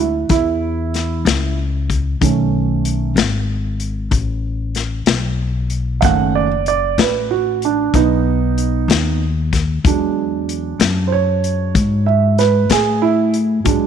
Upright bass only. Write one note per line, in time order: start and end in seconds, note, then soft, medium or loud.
0.00 0.27 D2 medium
0.30 1.23 E2 medium
1.25 2.18 C#2 medium
2.21 3.14 B1 medium
3.16 4.09 G#1 medium
4.11 5.04 A1 medium
5.07 6.00 B1 medium
6.02 6.95 F#1 medium
6.98 7.91 A1 medium
7.94 8.86 B1 medium
8.88 9.81 D#2 medium
9.84 10.77 E2 medium
10.79 11.72 F#2 medium
11.75 12.68 G#2 medium
12.70 13.63 A2 medium
13.65 13.87 G#2 medium